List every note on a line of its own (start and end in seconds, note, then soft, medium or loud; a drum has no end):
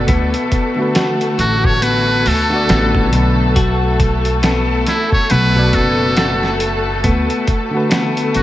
0.00 8.43 A3 medium
0.00 8.43 A4 medium
0.08 0.31 D2 loud
0.08 0.92 B3 loud
0.08 kick loud
0.08 closed hi-hat medium
0.34 closed hi-hat soft
0.52 kick medium
0.52 closed hi-hat medium
0.76 2.44 D3 medium
0.76 2.45 A3 medium
0.76 2.46 F#4 medium
0.82 2.47 B4 medium
0.95 1.37 F#4 medium
0.95 snare loud
0.95 closed hi-hat medium
1.21 closed hi-hat soft
1.38 2.22 A1 medium
1.38 1.67 F#4 loud
1.38 closed hi-hat medium
1.64 1.85 C#5 loud
1.64 kick loud
1.82 2.24 B3 medium
1.82 2.29 B4 loud
1.82 closed hi-hat medium
2.26 2.69 D2 medium
2.26 3.14 A4 loud
2.26 open hi-hat medium
2.49 3.53 D3 medium
2.49 3.54 A3 medium
2.49 3.55 F#4 medium
2.56 3.56 D5 medium
2.69 3.12 A1 loud
2.69 3.53 B3 loud
2.69 snare loud
2.69 closed hi-hat medium
2.95 kick loud
3.12 4.83 B1 loud
3.12 closed hi-hat medium
3.56 3.98 F#4 medium
3.56 kick loud
3.56 closed hi-hat medium
4.00 kick loud
4.00 closed hi-hat medium
4.25 closed hi-hat soft
4.43 4.85 B3 medium
4.43 snare loud
4.43 closed hi-hat medium
4.87 5.11 E4 medium
4.87 snare medium
4.87 closed hi-hat medium
5.12 5.32 C#5 loud
5.12 kick loud
5.30 5.70 B1 loud
5.30 6.14 B3 loud
5.30 5.76 B4 loud
5.30 closed hi-hat medium
5.55 6.36 B2 medium
5.55 6.37 B3 medium
5.55 6.37 F#4 medium
5.55 6.38 D5 medium
5.73 7.01 F#1 medium
5.73 6.61 A4 loud
5.73 kick medium
5.73 closed hi-hat medium
6.17 6.58 F#4 medium
6.17 snare loud
6.17 closed hi-hat medium
6.43 snare soft
6.60 closed hi-hat medium
7.04 7.26 D2 medium
7.04 7.46 B3 medium
7.04 kick loud
7.04 closed hi-hat medium
7.30 closed hi-hat soft
7.47 kick loud
7.47 closed hi-hat medium
7.70 8.43 D3 medium
7.70 8.43 A3 medium
7.75 8.43 F#4 medium
7.75 8.43 B4 medium
7.90 8.43 B3 loud
7.90 snare loud
7.90 closed hi-hat loud
8.17 closed hi-hat soft
8.35 8.43 A1 medium
8.35 8.43 F#4 medium
8.35 closed hi-hat medium